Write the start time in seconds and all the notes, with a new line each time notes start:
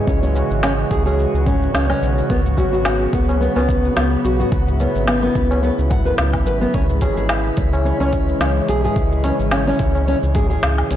Already playing: C#3 E3 G#3
0.07 C#2 C#4 F#4, kick, shaker
0.23 C#4, shaker
0.35 tabla na, tabla tin, shaker
0.51 G#1, shaker
0.63 C#4, snare, low woodblock, shaker
0.91 C#2 G#4, kick, shaker
1.06 G#4, tabla na, shaker
1.20 shaker
1.34 C#2, tabla tin, shaker
1.47 C#4, kick, tabla ge, shaker
1.63 shaker
1.74 C#2 C#4, snare, shaker
1.90 C#4, low woodblock
2.02 B1, tabla na, tabla tin, shaker
2.18 shaker
2.29 C#2 F#3 B3, kick, shaker
2.45 tabla ge, shaker
2.58 F#4, kick, tabla na, shaker
2.73 G#1 F#4, shaker
2.85 snare, low woodblock, shaker
3.13 C#2 B3, kick, shaker
3.29 tabla na, shaker
3.41 B3, shaker
3.56 C#2 B3, tabla na, shaker
3.69 kick, shaker
3.85 shaker
3.96 C#2 B3, snare, tabla na, shaker
4.13 tabla tin
4.25 B1 F#4, shaker
4.40 F#4, tabla tin, tabla ge, shaker
4.51 C#2 E4, kick, shaker
4.68 tabla ge, shaker
4.80 B3, tabla na, tabla tin, shaker
4.96 G#1, shaker
5.08 B3, snare, low woodblock, shaker
5.23 B3
5.35 C#2, kick, shaker
5.51 tabla na, shaker
5.63 B3, shaker
5.78 C#2, tabla tin, shaker
5.90 F#5, kick, tabla ge, shaker
6.05 B4, tabla tin, shaker
6.18 C#2 B3, snare, shaker
6.33 kick, low woodblock, shaker
6.46 G#1 B4, tabla na, tabla tin, shaker
6.61 B3, shaker
6.73 C#2 C#3 E3 G#3 C#4, kick, shaker
6.89 tabla ge, shaker
7.01 G#4, kick, closed hi-hat, tabla na, shaker
7.17 G#1 G#4, shaker
7.29 snare, low woodblock, shaker
7.57 C#2 C#4, kick, closed hi-hat, shaker
7.73 tabla na, shaker
7.85 C#4, shaker
8.00 C#2 C#4, tabla na, shaker
8.13 kick, closed hi-hat, shaker
8.28 shaker
8.41 C#2 C#4, snare, tabla na, shaker
8.56 tabla tin
8.69 B1 G#4, closed hi-hat, shaker
8.84 G#4, tabla tin, tabla ge, shaker
8.96 C#2, kick, shaker
9.12 shaker
9.24 C#4, closed hi-hat, tabla na, tabla tin, shaker
9.40 G#1, shaker
9.51 C#4, snare, low woodblock, shaker
9.67 C#4
9.79 C#2, kick, closed hi-hat, shaker
9.95 tabla na, shaker
10.08 C#4, shaker
10.23 C#2, tabla tin, shaker
10.35 G#4, kick, closed hi-hat, tabla ge, shaker
10.50 G#4, shaker
10.63 C#2, snare, shaker
10.78 low woodblock
10.91 B1 C#4, closed hi-hat, tabla na, tabla tin, shaker